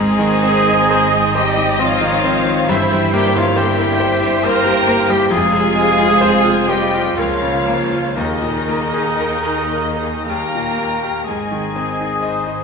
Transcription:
Already playing: G#1 G#2 G#3 C4 D#4 G#4 C5 D#5 G#5
0.19 D#3
0.43 C4
0.67 D#4
0.90 C4 D#4 C5 D#5
1.12 D#4
1.35 G3 G4 C5 D#5 G5
1.57 D#4
1.78 F3 C4 F4 C#5 F5
2.01 D#3
2.24 C4 D#4
2.46 D#3
2.68 G1 G2 E3 E4 C5 E5
2.92 G3
3.13 G3 A#3 G4 E5 G5
3.35 F3 E4 F4 C#5 F5
3.56 G3 A#3 E4 G4 A#4 C5 E5 G5
3.78 E4
3.99 G4 C5
4.21 E4
4.43 A#3 G4 A#4 G5 A#5
4.65 G3
4.87 A#3
5.09 G3 G4 E5 G5
5.30 F1 F2 G#3 C4 F4 G#4 F5 G#5
5.52 C3
5.74 G#3
5.98 F4
6.21 C5
6.44 F4
6.68 G3 G4 C5 D#5 G5
6.93 F4
7.16 C#2 F3 A#3 F4 A#4 C#5 F5
7.41 C#3
7.66 A#3 C5
7.92 F4
8.15 D#2 D#3 A#3 D#4 G#4 A#4 D#5
8.42 A#2
8.68 A#3
8.94 G#4
9.19 A#4
9.45 G#4
9.74 A#4
10.02 G#4
10.26 D#2 G3 A#3 D#4 G4 A#4 G5 A#5
10.55 A#2
10.78 A#3
11.04 G4
11.24 G#1 G#3 C4 D#4 G#4 D#5 G#5
11.29 G#2
11.50 D#3 C4 G#4
11.72 C4 D#4
11.97 C4 D#4 G#4
12.20 D#4 C5 D#5
12.43 C4 D#4 G#4

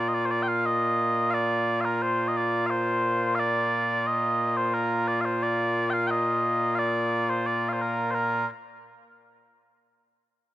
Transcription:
Already playing: A#2 A#3 F4
0.08 D#5
0.14 D5
0.26 C5
0.31 D5
0.43 G5
0.48 F5
0.66 D#5
1.30 D5 F5
1.81 F5
1.85 A#4
2.02 C5
2.28 D#5
2.37 D5
2.66 C5 F5
3.35 F5
3.39 D5
4.07 D#5
4.57 C5
4.74 A#4
5.08 D5
5.21 F5
5.25 C5
5.43 D5
5.90 F5 G5
6.07 D#5 G5
6.75 D5 F5
7.30 C5
7.46 D5
7.69 C5 F5
7.82 A#4
8.11 A#4 C5

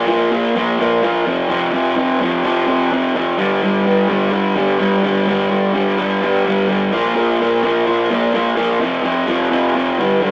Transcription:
0.07 A#2 F3 A#3
0.31 A#2 F3 A#3
0.55 A#2 F3 A#3
0.79 A#2 F3 A#3
1.03 A#2 F3 A#3
1.26 F2 C3 F3
1.48 F2 C3 F3
1.72 F2 C3 F3
1.96 F2 C3 F3
2.20 F2 C3 F3
2.44 F2 C3 F3
2.67 F2 C3 F3
2.91 F2 C3 F3
3.15 F2 C3 F3
3.38 G2 D3 G3
3.62 G2 D3 G3
3.86 G2 D3 G3
4.08 G2 D3 G3
4.32 G2 D3 G3
4.55 G2 D3 G3
4.79 G2 D3 G3
5.03 G2 D3 G3
5.26 G2 D3 G3
5.50 G2 D3 G3
5.74 G2 D3 G3
5.98 G2 D3 G3
6.22 G2 D3 G3
6.45 G2 D3 G3
6.67 G2 D3 G3
6.92 A#2 F3 A#3
7.15 A#2 F3 A#3
7.40 A#2 F3 A#3
7.63 A#2 F3 A#3
7.87 A#2 F3 A#3
8.10 A#2 F3 A#3
8.33 A#2 F3 A#3
8.56 A#2 F3 A#3
8.81 F2 C3 F3
9.03 F2 C3 F3
9.28 F2 C3 F3
9.51 F2 C3 F3
9.75 F2 C3 F3
10.00 G2 D3 G3
10.21 G2 D3 G3

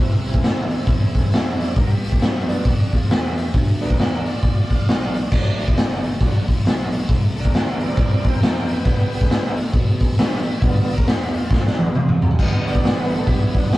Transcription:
Already playing: C2 E3 C4
0.26 G3 C4 E4, open hi-hat
0.34 kick
0.43 D2, snare, open hi-hat
0.70 open hi-hat
0.87 E2, kick, open hi-hat
1.15 kick, open hi-hat
1.32 F2, snare, open hi-hat
1.60 D5, open hi-hat
1.76 G2 A#4, kick, open hi-hat
1.86 F#4
1.90 G4
2.04 open hi-hat
2.12 kick
2.20 F#2, snare, open hi-hat
2.47 G3 B3 D4 F4, open hi-hat
2.65 F2 A#3, kick, open hi-hat
2.80 D4
2.93 F4, kick, open hi-hat
3.09 E2 G4, snare, open hi-hat
3.37 open hi-hat
3.54 D2, kick, open hi-hat
3.81 G3 B3 D4 A4, open hi-hat
3.85 D4 A#4
3.90 kick
3.98 E2 D4 A#4, snare, open hi-hat
4.14 D4 A#4
4.26 F4 D5, muted fingered electric bass stroke, open hi-hat
4.42 D2 F4 D5, kick, open hi-hat
4.60 F4 D5
4.70 D5, muted fingered electric bass stroke, kick, open hi-hat
4.75 F5
4.86 B1 D5 F5, snare, open hi-hat
5.04 D5 F5
5.15 open hi-hat
5.21 D5
5.31 A1 F#3 A3 D4, kick, crash
5.60 open hi-hat
5.68 kick
5.76 F#1, snare, open hi-hat
6.04 open hi-hat
6.20 A1 F#3 A3 D4, kick, open hi-hat
6.48 kick, open hi-hat
6.64 B1, snare, open hi-hat
6.92 open hi-hat
7.09 C2, kick, open hi-hat
7.36 D4 A4 A#4, open hi-hat
7.45 kick
7.53 D2 D4 A#4, snare, open hi-hat
7.70 D4 A#4
7.80 E3 G3 C4, open hi-hat
7.85 A#4 D5
7.97 E2 A#4 D5, kick, open hi-hat
8.13 A#4 D5
8.24 kick, open hi-hat
8.28 A#4 G5
8.41 F2 A#4 G5, snare, open hi-hat
8.58 A#4 G5
8.69 B4, open hi-hat
8.73 G5
8.85 G2 D3 G3 B3, kick, open hi-hat
9.13 open hi-hat
9.21 kick
9.29 A2, snare, open hi-hat
9.57 open hi-hat
9.73 B2, kick, open hi-hat
10.00 kick, open hi-hat
10.17 G2 G4, snare, open hi-hat
10.45 muted fingered electric bass stroke, open hi-hat
10.60 D2 D3 G3 E4, kick, open hi-hat
10.64 B3 F4
10.90 A#4, open hi-hat
10.98 kick
11.06 E2 G4, snare, open hi-hat
11.34 F4, open hi-hat
11.50 D2, kick, snare
11.66 F3 D4, snare
11.79 D3 G3 B3, high tom
11.87 high tom
11.95 F2, mid tom
12.09 mid tom
12.22 floor tom
12.31 floor tom
12.39 D2 D3 G3 B3, kick, crash
12.65 C#5, open hi-hat
12.71 D5
12.75 kick
12.83 A1, snare, open hi-hat
13.00 B4
13.11 A4, open hi-hat
13.27 B1 G4, kick, open hi-hat
13.43 E4
13.55 D4, kick, open hi-hat
13.71 C2 B3, snare, open hi-hat

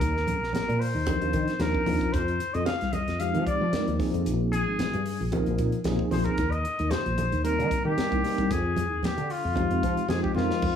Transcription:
Already playing: A#4
0.00 D#2, kick, closed hi-hat, muted conga
0.17 snare
0.27 closed hi-hat, muted conga, low conga
0.41 A#1, snare
0.53 A#4, snare, closed hi-hat, low conga
0.68 A#2, closed hi-hat
0.80 C5, open hi-hat
0.94 D#2
1.07 F3 C4 D4 D#4 A#4, kick, closed hi-hat, muted conga, high conga
1.21 D#2, closed hi-hat
1.33 D#3, kick, closed hi-hat
1.48 snare, closed hi-hat
1.59 D#2 F3 C4 D4 D#4 A#4, snare, closed hi-hat, high conga
1.75 kick
1.86 D#2 F3 C4 D4 D#4 F4, open hi-hat, muted conga, high conga
2.01 kick, closed hi-hat
2.12 F2 C5, kick, closed hi-hat, muted conga
2.28 closed hi-hat
2.40 closed hi-hat, muted conga
2.54 F2 D#5, closed hi-hat
2.66 F5, snare, closed hi-hat, high conga
2.81 C2, snare, closed hi-hat
2.93 D#5, closed hi-hat, high conga
3.08 F2, snare, closed hi-hat
3.19 F3 G#3 C4 D#4 G4 F5, closed hi-hat, muted conga
3.34 F3, closed hi-hat
3.46 D5, kick, closed hi-hat
3.61 F3
3.73 F3 G#3 C4 D#4 A#4, snare, closed hi-hat, high conga
3.88 D#2, closed hi-hat
3.99 F3 A#3 C4 D#4 G#4, kick, snare, open hi-hat, muted conga
4.14 F2, closed hi-hat
4.25 A#1, closed hi-hat, muted conga
4.52 G#4, closed hi-hat, muted conga
4.67 G#1
4.79 snare, closed hi-hat, low conga
4.93 G2, closed hi-hat
5.06 open hi-hat
5.20 A#1
5.32 F3 A#3 C4 D#4 A#4, kick, closed hi-hat, muted conga, high conga
5.46 A#1, closed hi-hat
5.58 A#2, kick, closed hi-hat
5.72 closed hi-hat
5.84 A#1 F3 A#3 C4 D#4 G#4, snare, closed hi-hat, high conga
5.99 kick
6.11 A#1 F3 A#3 C4 D#4 G#4 C5, snare, open hi-hat, muted conga, high conga
6.24 A#4, kick, closed hi-hat
6.38 D#2, kick, closed hi-hat, muted conga
6.51 D#5, closed hi-hat
6.65 closed hi-hat, muted conga
6.79 D#2, closed hi-hat
6.90 C5, snare, closed hi-hat, high conga
7.06 A#1, closed hi-hat
7.18 closed hi-hat, high conga
7.32 D#2, closed hi-hat
7.44 G3 A#3 C4 D#4 A#4, closed hi-hat, muted conga
7.59 D#3, closed hi-hat
7.71 kick, closed hi-hat
7.85 D#3 G4
7.97 G3 A#3 C4 D#4 A#4, snare, closed hi-hat, high conga
8.12 C2, kick, closed hi-hat
8.23 G3 A#3 C4 D#4 A#4, muted fretless electric bass stroke, snare, open hi-hat
8.38 C2, kick, closed hi-hat
8.50 F2 G#4, kick, closed hi-hat, muted conga
8.77 closed hi-hat, muted conga, low conga
8.91 D#2
9.03 G4, snare, closed hi-hat, low conga
9.17 D3, closed hi-hat
9.30 F4, open hi-hat
9.45 F2
9.56 F3 G#3 C4 D#4 G4, kick, closed hi-hat, muted conga, high conga
9.71 F2, closed hi-hat
9.83 F3, kick, closed hi-hat
9.97 closed hi-hat
10.09 F2 F3 G#3 C4 D#4 G4 G#4, snare, closed hi-hat, high conga
10.22 G4, kick
10.34 F2 F3 G#3 C4 D#4 F4 A#4, snare, muted conga, high conga
10.51 snare
10.62 F2, kick, crash

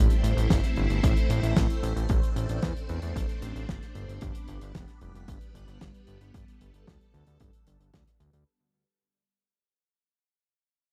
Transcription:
Already playing: A3 C4 E4 C5
0.10 closed hi-hat
0.24 A1, closed hi-hat
0.37 A1, closed hi-hat
0.50 G1, kick, snare, closed hi-hat
0.63 snare, closed hi-hat
0.76 G1, closed hi-hat
0.90 G1, closed hi-hat
1.03 A1, kick, closed hi-hat
1.17 closed hi-hat
1.30 A1, closed hi-hat
1.43 A1, closed hi-hat
1.56 A1, kick, snare, closed hi-hat
1.70 closed hi-hat
1.83 A1, closed hi-hat
1.96 A1, closed hi-hat
2.09 A1 D4, kick, closed hi-hat
2.23 closed hi-hat
2.36 A1, closed hi-hat
2.49 A1, closed hi-hat
2.62 E2, kick, snare, closed hi-hat
2.77 closed hi-hat
2.89 E2, closed hi-hat
3.02 E2, closed hi-hat
3.16 A1, kick, closed hi-hat
3.29 closed hi-hat
3.42 A1, closed hi-hat
3.56 A1, closed hi-hat
3.69 G1, kick, snare, closed hi-hat
3.82 snare, closed hi-hat
3.95 G1, closed hi-hat
4.09 G1, closed hi-hat
4.21 G1 G3 B3 B4, kick, closed hi-hat
4.35 closed hi-hat
4.48 G1, closed hi-hat
4.61 G1, closed hi-hat
4.75 F1, kick, snare, closed hi-hat
4.88 snare, closed hi-hat
5.01 F1, closed hi-hat
5.15 F1, closed hi-hat
5.28 G1, kick, closed hi-hat
5.41 closed hi-hat
5.55 G1, closed hi-hat
5.68 G1, closed hi-hat
5.81 G1, kick, snare, closed hi-hat
5.94 closed hi-hat
6.07 G1, closed hi-hat
6.21 G1, closed hi-hat
6.34 G1 A4, kick, closed hi-hat
6.48 closed hi-hat
6.61 G1, closed hi-hat
6.74 G1, closed hi-hat
6.87 D2, kick, snare, closed hi-hat
7.01 closed hi-hat
7.14 D2, closed hi-hat
7.27 D2, closed hi-hat
7.40 G1, kick, closed hi-hat
7.53 closed hi-hat
7.67 G1, closed hi-hat
7.80 G1, closed hi-hat
7.94 D2, kick, snare, closed hi-hat
8.07 snare, closed hi-hat
8.20 D2, closed hi-hat
8.33 D2, closed hi-hat

